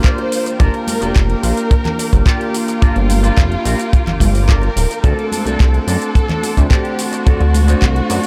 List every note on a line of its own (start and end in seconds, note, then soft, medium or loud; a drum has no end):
0.00 0.56 A#3 medium
0.00 0.56 D4 medium
0.00 0.57 F4 medium
0.00 0.25 F4 loud
0.00 0.57 G4 medium
0.00 0.25 G4 medium
0.00 0.57 A#4 loud
0.00 5.00 A#4 medium
0.00 5.00 F5 medium
0.00 5.00 G5 medium
0.00 8.27 D6 medium
0.04 0.25 A#4 medium
0.04 0.60 C5 loud
0.04 0.26 D5 loud
0.04 kick loud
0.04 clap loud
0.04 closed hi-hat medium
0.04 shaker soft
0.18 closed hi-hat soft
0.18 high bongo medium
0.32 open hi-hat loud
0.32 shaker medium
0.45 muted clean electric guitar stroke loud
0.45 closed hi-hat medium
0.45 shaker soft
0.59 0.69 G1 loud
0.59 0.98 A#3 medium
0.59 0.98 D4 medium
0.59 0.73 F4 loud
0.59 0.98 F4 medium
0.59 0.74 G4 loud
0.59 0.98 G4 medium
0.59 1.39 A#4 loud
0.59 0.74 A#4 loud
0.59 0.74 D5 loud
0.59 0.98 A5 medium
0.59 kick loud
0.59 closed hi-hat medium
0.59 shaker soft
0.74 closed hi-hat soft
0.86 muted clean electric guitar stroke soft
0.86 open hi-hat loud
0.86 high conga medium
0.86 shaker medium
1.01 1.12 F1 soft
1.01 2.10 A#3 loud
1.01 2.10 D4 medium
1.01 1.22 F4 medium
1.01 2.10 F4 medium
1.01 1.22 G4 medium
1.01 2.10 G4 medium
1.01 1.23 A#4 medium
1.01 2.11 A#4 loud
1.01 1.23 D5 medium
1.01 closed hi-hat medium
1.01 high bongo medium
1.01 shaker soft
1.16 1.35 F1 medium
1.16 kick loud
1.16 clap loud
1.16 closed hi-hat medium
1.16 shaker soft
1.30 closed hi-hat soft
1.42 1.53 A#1 medium
1.42 1.57 F4 medium
1.42 1.57 G4 medium
1.42 1.57 A#4 medium
1.42 2.23 A#4 loud
1.42 1.58 F5 loud
1.42 open hi-hat loud
1.42 shaker medium
1.57 closed hi-hat medium
1.57 shaker soft
1.70 muted clean electric guitar stroke soft
1.70 kick loud
1.70 closed hi-hat medium
1.70 shaker soft
1.85 clap soft
1.85 closed hi-hat soft
1.85 low conga medium
1.98 muted clean electric guitar stroke soft
1.98 open hi-hat loud
1.98 high bongo medium
1.98 shaker medium
2.12 2.22 G1 loud
2.12 2.79 A#3 medium
2.12 2.79 D4 medium
2.12 2.79 F4 medium
2.12 2.79 G4 medium
2.12 2.79 A#4 loud
2.12 muted clean electric guitar stroke soft
2.12 kick medium
2.12 closed hi-hat medium
2.12 shaker soft
2.25 2.47 F4 loud
2.25 2.47 G4 medium
2.25 2.53 G4 medium
2.25 2.48 A#4 medium
2.25 2.48 D5 loud
2.25 kick loud
2.25 clap loud
2.25 closed hi-hat medium
2.25 shaker soft
2.41 closed hi-hat soft
2.54 4.49 F4 loud
2.54 open hi-hat loud
2.54 shaker medium
2.67 muted clean electric guitar stroke loud
2.67 closed hi-hat medium
2.67 shaker soft
2.81 2.93 G1 soft
2.81 3.20 A#3 medium
2.81 3.21 D4 medium
2.81 2.95 F4 loud
2.81 3.21 F4 medium
2.81 2.96 G4 loud
2.81 3.21 G4 medium
2.81 2.96 A#4 loud
2.81 2.96 D5 loud
2.81 3.21 A5 medium
2.81 kick loud
2.81 closed hi-hat soft
2.81 shaker soft
2.96 3.31 G1 medium
2.96 closed hi-hat soft
3.09 muted clean electric guitar stroke soft
3.09 open hi-hat loud
3.09 high conga medium
3.09 shaker medium
3.22 4.32 A#3 medium
3.22 4.32 D4 medium
3.22 3.44 F4 medium
3.22 4.32 F4 medium
3.22 3.44 G4 medium
3.22 4.33 G4 medium
3.22 3.44 A#4 medium
3.22 4.33 A#4 loud
3.22 3.45 D5 loud
3.22 closed hi-hat soft
3.22 high bongo medium
3.22 shaker soft
3.37 3.56 F1 medium
3.37 kick loud
3.37 clap loud
3.37 closed hi-hat medium
3.37 shaker soft
3.52 closed hi-hat soft
3.64 3.75 A#1 medium
3.64 3.79 F4 medium
3.64 3.79 G4 medium
3.64 3.79 A#4 medium
3.64 3.80 C5 loud
3.64 open hi-hat loud
3.64 shaker medium
3.79 closed hi-hat medium
3.79 shaker soft
3.92 muted clean electric guitar stroke soft
3.92 kick loud
3.92 closed hi-hat medium
3.92 shaker soft
4.07 4.18 G1 soft
4.07 clap soft
4.07 closed hi-hat soft
4.07 high bongo soft
4.07 low conga medium
4.20 4.69 G1 loud
4.20 muted clean electric guitar stroke soft
4.20 kick medium
4.20 open hi-hat loud
4.20 high conga loud
4.20 shaker medium
4.34 muted clean electric guitar stroke soft
4.34 open hi-hat medium
4.34 shaker soft
4.47 4.69 F4 medium
4.47 4.69 G4 medium
4.47 4.69 A#4 medium
4.47 5.04 A#4 loud
4.47 4.70 D5 loud
4.47 kick loud
4.47 clap loud
4.47 closed hi-hat medium
4.47 shaker soft
4.62 closed hi-hat soft
4.62 high bongo medium
4.76 4.86 D1 medium
4.76 open hi-hat loud
4.76 shaker medium
4.89 muted clean electric guitar stroke loud
4.89 closed hi-hat medium
4.89 shaker soft
5.03 5.14 D2 loud
5.03 5.43 A3 medium
5.03 5.43 C4 medium
5.03 5.43 D4 medium
5.03 5.18 F#4 loud
5.03 5.43 F#4 medium
5.03 5.18 A4 loud
5.03 5.43 A4 medium
5.03 5.87 A4 loud
5.03 5.18 C5 loud
5.03 8.27 C5 medium
5.03 5.18 D5 loud
5.03 8.27 F#5 medium
5.03 8.27 A5 medium
5.03 kick loud
5.03 closed hi-hat soft
5.03 shaker soft
5.19 closed hi-hat soft
5.31 muted clean electric guitar stroke soft
5.31 open hi-hat loud
5.31 high conga medium
5.31 shaker medium
5.45 5.57 C2 soft
5.45 6.54 A3 loud
5.45 6.54 C4 medium
5.45 6.54 D4 medium
5.45 5.66 F#4 medium
5.45 6.55 F#4 medium
5.45 5.67 A4 medium
5.45 5.67 C5 medium
5.45 6.55 C5 loud
5.45 5.67 D5 loud
5.45 closed hi-hat medium
5.45 high bongo medium
5.45 shaker soft
5.60 5.79 C2 medium
5.60 kick loud
5.60 clap loud
5.60 closed hi-hat medium
5.60 shaker soft
5.74 closed hi-hat soft
5.87 5.97 F#2 medium
5.87 6.01 F#4 medium
5.87 6.01 A4 medium
5.87 6.67 A4 loud
5.87 6.02 C5 medium
5.87 6.02 D5 loud
5.87 open hi-hat loud
5.87 shaker medium
6.02 closed hi-hat medium
6.02 shaker soft
6.15 muted clean electric guitar stroke soft
6.15 kick loud
6.15 closed hi-hat medium
6.15 shaker soft
6.29 clap soft
6.29 closed hi-hat soft
6.29 low conga loud
6.42 muted clean electric guitar stroke soft
6.42 open hi-hat loud
6.42 high bongo medium
6.42 shaker medium
6.57 6.67 D2 loud
6.57 7.23 A3 medium
6.57 7.23 C4 medium
6.57 7.23 D4 medium
6.57 7.24 F#4 medium
6.57 7.24 C5 loud
6.57 muted clean electric guitar stroke soft
6.57 kick medium
6.57 closed hi-hat medium
6.57 shaker soft
6.70 6.91 F#4 medium
6.70 6.99 G4 medium
6.70 6.92 A4 medium
6.70 6.92 C5 medium
6.70 6.92 D5 loud
6.70 kick loud
6.70 clap loud
6.70 closed hi-hat medium
6.70 shaker soft
6.85 closed hi-hat soft
6.99 8.27 F#4 loud
6.99 open hi-hat loud
6.99 shaker medium
7.12 muted clean electric guitar stroke loud
7.12 closed hi-hat medium
7.12 shaker soft
7.26 7.38 D2 soft
7.26 7.65 A3 medium
7.26 7.65 C4 medium
7.26 7.65 D4 medium
7.26 7.40 F#4 loud
7.26 7.65 F#4 medium
7.26 7.40 A4 loud
7.26 7.65 A4 medium
7.26 7.41 C5 loud
7.26 7.41 D5 loud
7.26 kick loud
7.26 closed hi-hat medium
7.26 shaker soft
7.41 7.75 D2 medium
7.41 closed hi-hat soft
7.54 muted clean electric guitar stroke soft
7.54 open hi-hat loud
7.54 high conga medium
7.54 shaker medium
7.67 8.27 A3 loud
7.67 8.27 C4 medium
7.67 8.27 D4 medium
7.67 7.89 F#4 medium
7.67 8.27 F#4 medium
7.67 7.89 A4 medium
7.67 7.89 C5 medium
7.67 8.27 C5 loud
7.67 7.89 D5 loud
7.67 closed hi-hat medium
7.67 high bongo medium
7.67 shaker soft
7.82 8.01 C2 medium
7.82 kick loud
7.82 clap loud
7.82 closed hi-hat medium
7.82 shaker soft
7.96 closed hi-hat soft
8.09 8.19 F#2 medium
8.09 8.23 F#4 medium
8.09 8.24 A4 medium
8.09 8.24 C5 medium
8.09 8.24 D5 loud
8.09 open hi-hat loud
8.09 shaker medium
8.24 closed hi-hat medium